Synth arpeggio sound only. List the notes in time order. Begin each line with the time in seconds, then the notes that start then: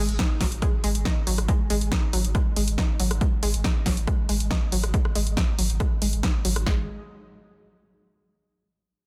0.19 D#4
0.41 F#3
0.62 G#3
0.84 G#3
1.05 D#4
1.27 F#3
1.48 G#3
1.70 G#3
1.92 D#4
2.13 F#3
2.35 G#3
2.56 G#3
2.78 D#4
3.00 F#3
3.21 G#3
3.43 G#3
3.64 D#4
3.86 F#3
4.07 G#3
4.29 G#3
4.51 D#4
4.72 F#3
4.94 G#3
5.15 G#3
5.37 D#4
5.59 F#3
5.80 G#3
6.02 G#3
6.23 D#4
6.45 F#3
6.66 G#3